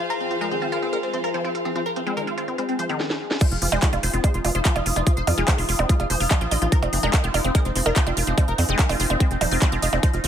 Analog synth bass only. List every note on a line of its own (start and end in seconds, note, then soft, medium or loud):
3.51 3.57 F1 medium
3.62 3.68 F#1 loud
3.72 3.78 F1 medium
3.93 3.99 F1 medium
4.03 4.09 F1 loud
4.14 4.20 F1 medium
4.34 4.40 F1 medium
4.45 4.51 F1 loud
4.55 4.61 F1 medium
4.76 4.82 F1 medium
4.86 4.92 F1 loud
4.96 5.02 F1 medium
5.17 5.23 F1 medium
5.27 5.33 F2 loud
5.38 5.44 F1 medium
5.58 5.64 F1 medium
5.69 5.75 F1 loud
5.79 5.85 F1 medium
6.00 6.06 F1 medium
6.10 6.16 F1 loud
6.20 6.26 F1 medium
6.41 6.47 A#1 medium
6.51 6.57 A#1 loud
6.62 6.68 A#1 loud
6.82 6.89 F1 medium
6.93 6.99 F#1 loud
7.03 7.09 F1 medium
7.24 7.30 F1 medium
7.34 7.40 F1 loud
7.44 7.51 F1 loud
7.65 7.71 F1 medium
7.76 7.82 F1 loud
7.86 7.92 F1 medium
8.07 8.13 F1 medium
8.17 8.23 F1 loud
8.27 8.33 F1 medium
8.48 8.54 F1 medium
8.58 8.64 F2 loud
8.69 8.75 F1 medium
8.89 8.95 F1 medium
9.00 9.06 F1 loud
9.10 9.16 F1 medium
9.31 9.37 F1 medium
9.41 9.47 D#1 loud
9.51 9.57 F1 medium
9.72 9.78 F1 medium
9.82 9.89 F1 loud
9.93 9.99 F1 medium
10.13 10.20 F1 medium
10.24 10.28 F#1 loud